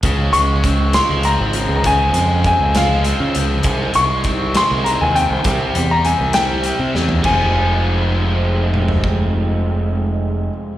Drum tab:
CC |------------|------------|------------|------------|
HH |x-x-x-x-x-x-|x-x-x-x-x-x-|x-x-x-x-x-x-|x-x-x-x-x---|
SD |------o-----|------o-----|------o-----|------o---o-|
T2 |------------|------------|------------|------------|
FT |------------|------------|------------|-----------o|
BD |o---o-------|o---o-------|o---o-------|o-----------|

CC |x-----------|------------|
HH |------------|------------|
SD |------------|------------|
T2 |----------o-|------------|
FT |-----------o|------------|
BD |o-----------|o-----------|